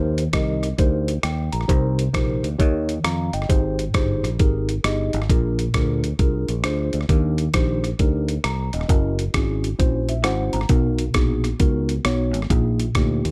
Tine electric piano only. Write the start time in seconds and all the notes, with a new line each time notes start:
Already playing: D#3 D#4 G4 A#4 C5
0.33 D#4 G4 A#4 D#5
0.78 D#4 G4 A#4 C5
1.24 G5
1.52 A#5
1.68 C3 D#4 G4 A#4 C5
2.13 D#4 G4 A#4 C5
2.59 D#3 D#4 G4 A#4 C#5
3.04 F5 A#5
3.34 D#5 G5
3.49 G#2 D#4 G4 G#4 C5
3.94 D#4 G4 G#4 C5
4.39 D#4 G4 G#4 A#4
4.84 D#4 G4 G#4 D#5
5.30 A#2 D4 F4 G#4 A#4
5.74 D4 F4 G#4 A#4
6.19 D4 F4 G#4 A#4
6.64 D4 F4 G#4 C5
7.09 D#3 D4 D#4 G4 A#4
7.54 D4 D#4 G4 C5
7.99 D4 D#4 G4 A#4
8.44 A#5
8.74 D#5
8.89 C#4 E4 F#4 A#4
9.34 C#4 E4 F#4 G#4
9.79 C#4 E4 F#4 C5
10.09 E5
10.24 C#4 E4 F#4 C5 F#5
10.53 A#5
10.69 B2 B3 D#4 F#4 A#4
11.14 B3 D#4 F#4 G#4
11.60 B3 D#4 F#4 A#4
12.05 B3 D#4 F#4 C#5
12.50 A#2 A#3 D#4 F4 G#4
12.95 A#3 D#4 F4 G4